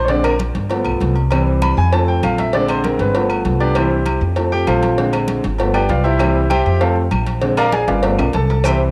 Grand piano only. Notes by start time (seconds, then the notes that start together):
0.05 D3 C#5
0.09 G#3 C4 D5
0.24 A#4
0.70 F3 A3 B3
1.30 E3 G3 C4
1.62 B5
1.78 G#5
1.93 F3 A3 C4 A5
2.08 G5
2.24 F5
2.39 E5
2.54 D3 G#3 C4 D5
2.70 C5
2.85 A#4
3.01 B4
3.15 F3 A3 B3
3.60 D4 G4 B4 D5
3.76 E3 G3 C4 E4 G4 C5
4.37 F3 A3 C4
4.52 G4 G5
4.67 F4 A4 C5 F5
4.97 D3 G#3 C4
5.59 F3 A3 B3
5.74 G4 B4 D5 G5
5.89 F4 B4 D5 F5
6.04 E4 G4 C5 E5
6.19 E3 G3 C4
6.50 G4 C5 E5 G5
6.80 F3 A3 C4 F4 A4 C5 F5
7.41 D3 G#3 C4
7.58 A#4 D5 F5 A#5
7.73 G#4 D5 F5 G#5
7.88 F4 B4 D5 F5
8.02 F3 A3 B3
8.35 A4 A5
8.65 E3 G3 C4 G4 C5 E5 G5